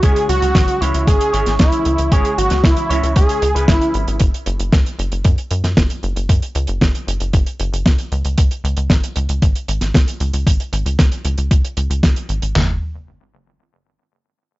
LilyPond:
<<
  \new Staff \with { instrumentName = "Analog synth lead" } { \time 4/4 \key cis \phrygian \tempo 4 = 115 gis'8 fis'4 e'8 gis'4 e'4 | gis'8 fis'8 e'4 gis'4 e'4 | r1 | r1 |
r1 | r1 | r1 | }
  \new Staff \with { instrumentName = "Clean electric guitar" } { \time 4/4 \key cis \phrygian <cis gis cis' e' cis''>4. <cis gis cis' e' cis''>4 <cis gis cis' e' cis''>4. | <cis gis cis' e' cis''>4. <cis gis cis' e' cis''>4 r16 <cis gis cis' e' b'>4~ <cis gis cis' e' b'>16 | r1 | r1 |
r1 | r1 | r1 | }
  \new Staff \with { instrumentName = "Analog synth bass" } { \clef bass \time 4/4 \key cis \phrygian cis,16 r16 cis,16 cis,16 gis,,16 r16 cis,16 cis,16 gis,,16 r16 gis,,16 gis,,16 cis,16 r16 cis,16 cis,16 | gis,,16 r16 gis,,16 cis,16 cis,16 r16 cis,16 cis,16 cis,16 r16 cis,16 cis,16 gis,,16 r16 gis,,16 gis,,16 | fis,,16 r16 fis,,16 fis,,16 cis,16 r16 fis,,16 fis,,16 fis,16 r16 fis,16 fis,16 fis,,16 r16 fis,,16 fis,,16 | fis,16 r16 cis,16 fis,,16 fis,,16 r16 fis,,16 fis,,16 fis,,16 r16 fis,,16 fis,,16 cis,16 r16 cis,16 cis,16 |
cis,16 r16 cis,16 cis,16 gis,,16 r16 cis,16 cis,16 gis,,16 r16 gis,,16 gis,,16 cis,16 r16 cis,16 cis,16 | gis,,16 r16 gis,,16 cis,16 cis,16 r16 cis,16 cis,16 cis,16 r16 cis,16 cis,16 cis,16 r16 gis,,16 gis,,16 | fis,,8 r2. r8 | }
  \new DrumStaff \with { instrumentName = "Drums" } \drummode { \time 4/4 <hh bd>16 hh16 hh16 hh16 <hh bd sn>16 hh16 hh16 hh16 <hh bd>16 hh16 hh16 <hh sn>16 <hh bd sn>16 hh16 hh16 hh16 | <hh bd>16 hh16 hh16 <hh sn>16 <hh bd sn>16 hh16 hh16 hh16 <hh bd>16 hh16 hh16 hh16 <hh bd sn>16 hh16 hh16 hh16 | <hh bd>16 hh16 hh16 hh16 <hh bd sn>16 hh16 hh16 hh16 <hh bd>16 hh16 hh16 <hh sn>16 <hh bd sn>16 hh16 hh16 hh16 | <hh bd>16 hh16 hh16 hh16 <hh bd sn>16 hh16 hh16 hh16 <hh bd>16 hh16 hh16 hh16 <hh bd sn>16 hh16 hh16 hh16 |
<hh bd>16 hh16 hh16 hh16 <hh bd sn>16 hh16 hh16 hh16 <hh bd>16 hh16 hh16 <hh sn>16 <hh bd sn>16 hh16 hh16 hh16 | <hh bd>16 hh16 hh16 hh16 <hh bd sn>16 hh16 hh16 hh16 <hh bd>16 hh16 hh16 hh16 <hh bd sn>16 hh16 hh16 hh16 | <hho sn tomfh>4 r4 r4 r4 | }
>>